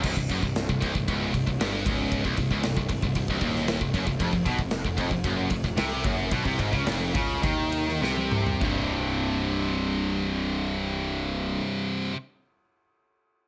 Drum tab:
CC |x---------------|----------------|----------------|----------------|
RD |--x-x-x-x-x-x-x-|x-x-x-x-x-x-x-x-|x-x-x-x-x-x-x-x-|x-x-x-x-x-x-----|
SD |----o-------o---|----o------oo---|----o------oo---|----o------oo---|
T1 |----------------|----------------|----------------|-------------o--|
T2 |----------------|----------------|----------------|--------------o-|
FT |----------------|----------------|----------------|---------------o|
BD |oooo-oooo-oo--o-|oooo-oooooo--ooo|oooo-oooo-oo--o-|oooo--o-o-------|

CC |----------------|----------------|
RD |----------------|----------------|
SD |----------------|----------------|
T1 |----------------|----------------|
T2 |----------------|----------------|
FT |----------------|----------------|
BD |o---------------|----------------|